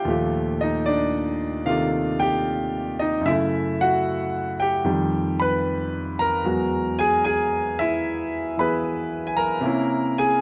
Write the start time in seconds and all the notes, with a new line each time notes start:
Already playing: G5
0.05 D#2 A#2 F3 A3
0.09 F4 G4
0.61 D#4 D#5
0.86 D4 D5
1.65 C3 D#3 A#3 F4 G4 A4 F5
2.20 G4 G5
2.99 D#4 D#5
3.21 F#2 C#3
3.26 A3 E4 E5
3.32 E4
3.81 F#4 F#5
4.60 G4 G5
4.84 F2 D#3 G3 G4
5.40 B4 B5
6.19 A#4 A#5
6.44 E2 F#3 G#3 F#4
6.99 G#4 G#5
7.24 G#4 G#5
7.79 E4 E5
8.57 E3 B3 G#4 B4 B5
9.27 G#5
9.37 A#4 A#5
9.61 C3 A#3 C#4
9.66 E4
10.18 G#4 G#5